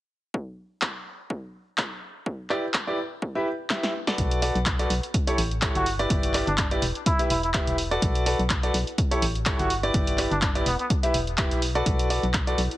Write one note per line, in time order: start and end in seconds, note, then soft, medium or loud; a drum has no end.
0.34 kick loud
0.82 kick medium
0.82 clap loud
1.30 kick loud
1.78 kick loud
1.78 clap loud
2.26 kick loud
2.50 2.64 E4 medium
2.50 2.64 G4 medium
2.50 2.64 B4 medium
2.50 2.64 D5 medium
2.50 clap soft
2.74 kick loud
2.74 clap loud
2.87 2.97 E4 medium
2.87 2.97 G4 medium
2.87 2.97 B4 medium
2.87 2.97 D5 medium
3.22 kick loud
3.35 3.47 E4 medium
3.35 3.47 G4 medium
3.35 3.47 B4 medium
3.35 3.47 E5 medium
3.70 3.91 E4 medium
3.70 3.91 G4 medium
3.70 3.91 B4 medium
3.70 3.91 E5 loud
3.70 kick loud
3.70 snare medium
3.70 clap loud
3.83 snare medium
4.07 4.40 F#4 medium
4.07 4.40 A4 medium
4.07 4.40 B4 medium
4.07 4.40 D5 loud
4.07 snare medium
4.18 4.51 B1 loud
4.18 5.43 B3 medium
4.18 kick loud
4.18 closed hi-hat medium
4.31 closed hi-hat medium
4.40 5.43 F#4 medium
4.40 4.56 F#4 medium
4.40 4.56 A4 medium
4.40 4.56 B4 medium
4.40 4.56 D5 medium
4.40 open hi-hat loud
4.55 4.86 B1 medium
4.55 closed hi-hat soft
4.66 kick loud
4.66 clap loud
4.66 closed hi-hat medium
4.79 4.91 F#4 medium
4.79 4.91 A4 medium
4.79 4.91 B4 medium
4.79 4.91 D5 medium
4.79 closed hi-hat medium
4.90 5.00 B1 medium
4.90 open hi-hat loud
5.03 closed hi-hat soft
5.14 6.25 A4 medium
5.14 kick loud
5.14 closed hi-hat medium
5.27 5.39 E4 medium
5.27 5.39 G4 medium
5.27 5.39 A4 medium
5.27 5.39 C#5 medium
5.27 closed hi-hat medium
5.38 5.71 A1 medium
5.38 open hi-hat loud
5.51 closed hi-hat soft
5.62 5.83 E4 medium
5.62 5.83 G4 medium
5.62 5.83 A4 medium
5.62 5.83 C#5 medium
5.62 kick loud
5.62 clap loud
5.62 closed hi-hat medium
5.75 6.06 G1 medium
5.75 5.91 F#4 medium
5.75 closed hi-hat medium
5.86 7.30 G4 medium
5.86 open hi-hat loud
5.99 6.32 E4 medium
5.99 6.32 G4 medium
5.99 6.32 B4 medium
5.99 6.32 D5 loud
5.99 closed hi-hat soft
6.05 7.30 D5 medium
6.10 6.43 G1 medium
6.10 7.30 A5 medium
6.10 kick loud
6.10 closed hi-hat medium
6.23 closed hi-hat medium
6.34 6.48 E4 medium
6.34 6.48 G4 medium
6.34 6.48 B4 medium
6.34 6.48 D5 medium
6.34 clap soft
6.34 open hi-hat loud
6.47 6.78 G1 medium
6.47 6.54 D4 medium
6.47 closed hi-hat soft
6.58 6.67 D4 medium
6.58 kick loud
6.58 clap loud
6.58 closed hi-hat medium
6.71 6.81 E4 medium
6.71 6.81 G4 medium
6.71 6.81 B4 medium
6.71 6.81 D5 medium
6.71 closed hi-hat medium
6.82 6.92 E1 medium
6.82 8.41 E4 medium
6.82 open hi-hat loud
6.95 closed hi-hat soft
7.01 8.42 B4 medium
7.06 7.24 E4 medium
7.06 8.42 F#5 medium
7.06 kick loud
7.06 closed hi-hat medium
7.19 7.31 E4 medium
7.19 7.31 G4 medium
7.19 7.31 B4 medium
7.19 7.31 E5 medium
7.19 closed hi-hat medium
7.30 7.63 E1 medium
7.30 7.38 E4 medium
7.30 open hi-hat loud
7.43 7.50 E4 medium
7.43 closed hi-hat soft
7.54 7.75 E4 medium
7.54 7.75 G4 medium
7.54 7.75 B4 medium
7.54 7.75 E5 loud
7.54 kick loud
7.54 clap loud
7.54 closed hi-hat medium
7.67 7.98 E1 medium
7.67 closed hi-hat medium
7.78 open hi-hat loud
7.91 8.24 F#4 medium
7.91 8.24 A4 medium
7.91 8.24 B4 medium
7.91 8.24 D5 loud
7.91 closed hi-hat soft
8.02 8.35 B1 loud
8.02 9.27 B3 medium
8.02 kick loud
8.02 closed hi-hat medium
8.15 closed hi-hat soft
8.26 8.40 F#4 medium
8.26 8.40 A4 medium
8.26 8.40 B4 medium
8.26 8.40 D5 medium
8.26 open hi-hat loud
8.39 8.70 B1 medium
8.39 closed hi-hat soft
8.50 kick loud
8.50 clap loud
8.50 closed hi-hat medium
8.63 8.75 F#4 medium
8.63 8.75 A4 medium
8.63 8.75 B4 medium
8.63 8.75 D5 medium
8.63 closed hi-hat soft
8.74 8.84 B1 medium
8.74 open hi-hat loud
8.87 closed hi-hat soft
8.98 10.10 A4 medium
8.98 kick loud
8.98 closed hi-hat medium
9.11 9.23 E4 medium
9.11 9.23 G4 medium
9.11 9.23 A4 medium
9.11 9.23 C#5 medium
9.11 closed hi-hat medium
9.22 9.55 A1 medium
9.22 open hi-hat loud
9.35 closed hi-hat soft
9.46 9.67 E4 medium
9.46 9.67 G4 medium
9.46 9.67 A4 medium
9.46 9.67 C#5 loud
9.46 kick loud
9.46 clap loud
9.46 closed hi-hat medium
9.59 9.90 G1 medium
9.59 9.75 F#4 medium
9.59 closed hi-hat soft
9.70 11.14 G4 medium
9.70 open hi-hat loud
9.83 10.16 E4 medium
9.83 10.16 G4 medium
9.83 10.16 B4 medium
9.83 10.16 D5 loud
9.83 closed hi-hat soft
9.93 10.27 G1 loud
9.93 11.14 D5 medium
9.93 kick loud
9.93 closed hi-hat medium
10.07 closed hi-hat medium
10.18 10.32 E4 medium
10.18 10.32 G4 medium
10.18 10.32 B4 medium
10.18 10.32 D5 medium
10.18 clap soft
10.18 open hi-hat loud
10.31 10.62 G1 medium
10.31 10.38 D4 medium
10.31 closed hi-hat soft
10.42 10.51 D4 medium
10.42 kick loud
10.42 clap loud
10.42 closed hi-hat medium
10.55 10.65 E4 medium
10.55 10.65 G4 medium
10.55 10.65 B4 medium
10.55 10.65 D5 medium
10.55 closed hi-hat soft
10.66 10.76 E1 medium
10.66 10.74 B3 medium
10.66 12.25 E4 medium
10.66 open hi-hat loud
10.79 10.86 B3 medium
10.79 closed hi-hat soft
10.84 12.25 B4 medium
10.90 12.25 F#5 medium
10.90 kick loud
10.90 closed hi-hat medium
11.03 11.15 E4 medium
11.03 11.15 G4 medium
11.03 11.15 B4 medium
11.03 11.15 E5 medium
11.03 closed hi-hat soft
11.14 11.53 E1 medium
11.14 open hi-hat loud
11.27 closed hi-hat soft
11.38 11.59 E4 medium
11.38 11.59 G4 medium
11.38 11.59 B4 medium
11.38 11.59 E5 medium
11.38 kick loud
11.38 clap loud
11.38 closed hi-hat medium
11.51 11.82 B1 medium
11.51 closed hi-hat soft
11.62 open hi-hat loud
11.75 12.08 F#4 medium
11.75 12.08 A4 medium
11.75 12.08 B4 medium
11.75 12.08 D5 loud
11.75 closed hi-hat soft
11.86 12.19 B1 loud
11.86 12.77 B3 medium
11.86 kick loud
11.86 closed hi-hat medium
11.91 12.77 F#4 medium
11.99 closed hi-hat soft
12.10 12.24 F#4 medium
12.10 12.24 A4 medium
12.10 12.24 B4 medium
12.10 12.24 D5 medium
12.10 open hi-hat loud
12.23 12.54 B1 medium
12.23 closed hi-hat soft
12.34 kick loud
12.34 clap loud
12.34 closed hi-hat medium
12.47 12.59 F#4 medium
12.47 12.59 A4 medium
12.47 12.59 B4 medium
12.47 12.59 D5 medium
12.47 closed hi-hat soft
12.58 12.68 B1 medium
12.58 open hi-hat loud
12.71 closed hi-hat soft